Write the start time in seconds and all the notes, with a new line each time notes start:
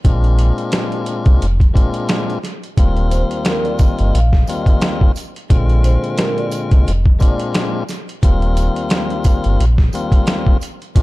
0.04 A#1 A#2 G#3 C4 D4 F4, kick, closed hi-hat
0.24 closed hi-hat
0.39 closed hi-hat
0.58 closed hi-hat
0.72 snare, closed hi-hat
0.92 closed hi-hat
1.06 closed hi-hat
1.26 C2, kick, closed hi-hat
1.42 F1, closed hi-hat
1.60 kick, closed hi-hat
1.73 A#2 G#3 C4 D4 F4, kick, closed hi-hat
1.94 closed hi-hat
2.09 snare, closed hi-hat
2.30 closed hi-hat
2.44 snare, closed hi-hat
2.63 closed hi-hat
2.77 D#1 D#2 G3 A#3 C4 F4, kick, closed hi-hat
2.97 closed hi-hat
3.11 C5, closed hi-hat, tambourine
3.31 closed hi-hat
3.45 A#4, snare, closed hi-hat
3.64 D5, closed hi-hat
3.79 D#5, kick, closed hi-hat, tambourine
3.99 G1, closed hi-hat
4.14 A#1 F5, closed hi-hat
4.33 kick, snare
4.47 D#2 G3 A#3 C4 F4 D#5, closed hi-hat, tambourine
4.66 kick, closed hi-hat
4.81 snare, closed hi-hat
5.01 kick
5.16 closed hi-hat, tambourine
5.36 closed hi-hat
5.49 A#1 A#2 D3 G#3 C4 F4, kick, closed hi-hat
5.69 closed hi-hat
5.84 C5, closed hi-hat, tambourine
6.04 closed hi-hat
6.17 A#4, snare, closed hi-hat
6.37 D5, closed hi-hat
6.51 closed hi-hat, tambourine
6.71 C2, kick, closed hi-hat
6.87 F1, closed hi-hat
7.06 kick
7.19 A#2 G#3 C4 D4 F4 D5, kick, closed hi-hat, tambourine
7.40 closed hi-hat
7.54 snare, closed hi-hat
7.89 snare, closed hi-hat, tambourine
8.09 closed hi-hat
8.23 D#1 D#2 G3 A#3 C4 F4, kick, closed hi-hat
8.42 closed hi-hat
8.57 closed hi-hat, tambourine
8.76 closed hi-hat
8.90 snare, closed hi-hat
9.10 closed hi-hat
9.24 kick, closed hi-hat, tambourine
9.44 G1, closed hi-hat
9.60 A#1, closed hi-hat
9.78 kick, snare
9.93 D#2 G3 A#3 C4 F4, closed hi-hat, tambourine
10.12 kick, closed hi-hat
10.27 snare, closed hi-hat
10.47 kick
10.61 closed hi-hat, tambourine
10.82 closed hi-hat
10.95 A#1 A#2 G#3 C4 D4 F4, kick, closed hi-hat